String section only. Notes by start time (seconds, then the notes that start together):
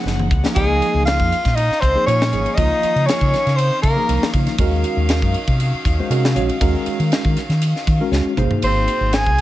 Already playing: C#3 G#3 A#3 F#5
0.55 D#3 C#4 D#4 F5
4.58 F#3
8.38 C3 F#3 A#3